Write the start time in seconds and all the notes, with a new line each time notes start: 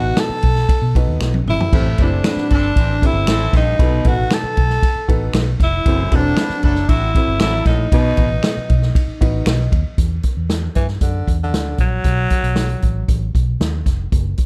Already playing: A1 B2 B3 D#4 F#4 B4 D#5
0.17 A4, finger snap, snare, ride
0.29 muted fingered electric bass stroke
0.43 B1, kick, ride
0.56 snare
0.69 kick, ride
0.82 B2
0.95 B1 B3 D#4 F#4 B4 D#5, kick, ride
1.07 D#2
1.20 B1, finger snap, snare
1.34 high tom
1.46 G#1 E4, mid tom
1.60 floor tom
1.73 A1 A2 C4 E4 G4 A4 C5, kick, crash
1.97 F#1 E3 C4 D4 E4 G4 A4 B4, kick, ride
2.03 D4 C5
2.24 B3 G4 B4, finger snap, snare, ride
2.36 muted fingered electric bass stroke, snare
2.49 G1 E3 C4 D4 A4, kick, ride
2.54 D4
2.76 A1 E3 C4 G4, kick, ride
3.01 C3 A3 C4 E4 G4 A4 C5, kick, ride
3.06 E4
3.13 G1
3.26 A1 E3 C4 A4, finger snap, snare, ride
3.53 A#1 G2 D#4, kick, snare, ride
3.79 B1 B2 B3 D#4 F#4 A4 B4, kick, ride
4.05 A1 B3 D#4 F#4 A4 B4, kick, ride
4.31 A4, finger snap, snare, ride
4.43 muted fingered electric bass stroke
4.57 B1, kick, ride
4.70 snare
4.83 kick, ride
4.96 muted fingered electric bass stroke
5.08 A1 B3 D#4 F#4 A4 B4, kick, ride
5.33 B1, finger snap, snare, ride
5.60 F1, kick, snare, ride
5.64 E4
5.86 F#1 F#2 C4 E4 F#4 A4 C5, kick, ride
6.11 E1 F#3 C4 D4 E4 F#4 A4 B4, kick, ride
6.15 D4 C5
6.37 B3 G4 B4, finger snap, snare, ride
6.50 muted fingered electric bass stroke, snare
6.62 F#1 F#3 D4 E4 A4, kick, ride
6.75 snare
6.89 A1 C3 A3 E4 F#4, kick, ride
7.14 C3 A3 C4 E4 F#4 A4 C5, kick, ride
7.28 G1
7.40 A1 F#3 E4 A4, finger snap, snare, ride
7.66 A#1 A2 D#4, kick, snare, ride
7.92 B1 B2 B3 D#4 F#4 B4 D#5, kick, ride
8.17 A1 B3 D#4 F#4 B4 D#5, kick, ride
8.43 finger snap, snare, ride
8.57 muted fingered electric bass stroke
8.70 B1, kick, ride
8.82 snare
8.95 kick, ride
9.08 muted fingered electric bass stroke
9.21 A1 B3 D#4 F#4 B4 D#5, kick, ride
9.46 B1 D#5, finger snap, snare, ride
9.72 D#2, kick, ride
9.98 E2, kick, closed hi-hat
10.23 kick, closed hi-hat
10.37 E2
10.50 snare, closed hi-hat
10.75 G2 E3, kick, closed hi-hat
10.88 snare
11.01 F#2 D3, kick, closed hi-hat
11.27 E2, kick, closed hi-hat
11.43 D3
11.52 D2, snare, closed hi-hat
11.78 A#1 F#3, kick, closed hi-hat
12.04 B1, kick, closed hi-hat
12.30 kick, closed hi-hat
12.43 B1, closed hi-hat
12.56 snare, closed hi-hat
12.69 closed hi-hat
12.82 A1, kick, closed hi-hat
13.08 A1, kick, closed hi-hat
13.35 B1, kick, closed hi-hat
13.60 D#2, snare, closed hi-hat
13.86 F1, kick, snare, closed hi-hat
14.12 F#1, kick, closed hi-hat
14.38 kick, closed hi-hat